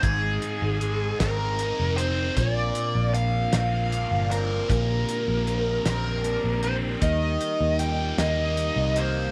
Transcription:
Already playing: G#3 C4 D#4
0.03 G#1 G#2 G#4, kick, closed hi-hat
0.42 closed hi-hat
0.62 G#1
0.81 G#3, closed hi-hat
1.20 G#1 C4 A#4, kick, snare, closed hi-hat
1.59 D#4, closed hi-hat
1.80 F1
1.97 C4 C5, closed hi-hat
2.36 A#1 A#2 A#3 C4 D4 F4 A#4 D5, kick, closed hi-hat
2.75 closed hi-hat
2.95 A#1
3.14 F3 F5, closed hi-hat
3.53 A#1 C4 F5, snare, closed hi-hat
3.91 D4, closed hi-hat
4.11 G1
4.31 C4 A#4, closed hi-hat
4.69 A#1 A#2 G4 A#4, kick, closed hi-hat
5.09 closed hi-hat
5.28 A#1
5.47 F3, closed hi-hat
5.85 A#1 C4 A#4, snare, closed hi-hat
6.23 D4, closed hi-hat
6.44 A#1
6.63 C4 C5, closed hi-hat
7.01 D#2 D#3 G3 D#4 G4 D#5, kick, closed hi-hat
7.41 closed hi-hat
7.60 D#2
7.79 G3 G5, closed hi-hat
8.18 D#2 A#3 D#5, snare, closed hi-hat
8.57 D#4, closed hi-hat
8.76 C2
8.96 A#3 C5, closed hi-hat

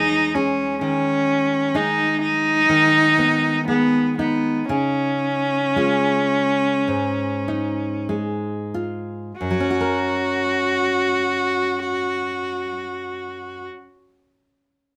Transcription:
Already playing: E2 E3 G#3 C#4 D#4 G#4
0.35 C#4 G#4
0.81 D#3 C#4
1.74 G#3 D#4
2.22 D#4
2.69 D#3
3.18 B3
3.68 G#3 B3
4.18 B3 D#4
4.69 C#3 C#4
5.76 G#3 F4
6.88 G#2
7.48 D#4
8.09 G#3
8.74 F4
9.39 F#2 F#4
9.51 F#3
9.60 C#4
9.70 F#4
9.81 A#4

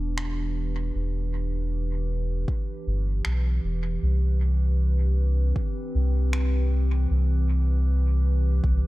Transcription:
Already playing: E1 E3 B3 D4 G4 B4
0.18 finger snap
0.95 E1
2.48 kick
2.87 G1
3.25 B1, finger snap
3.64 E1
4.02 C2
4.46 C4
5.56 kick
5.95 C2
6.33 finger snap
7.10 C2
8.63 C2, kick

